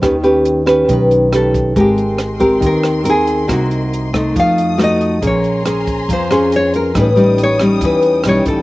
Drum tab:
HH |xxxxxxxx|xxxxxxxx|xxxxxxxx|xxxxxxxx|
SD |r--r--r-|--r--r--|r--r--r-|--r--r--|
BD |o---o--o|o--oo---|o--oo---|o--oo---|

HH |xxxxxxxx|
SD |r--r--r-|
BD |o---o--o|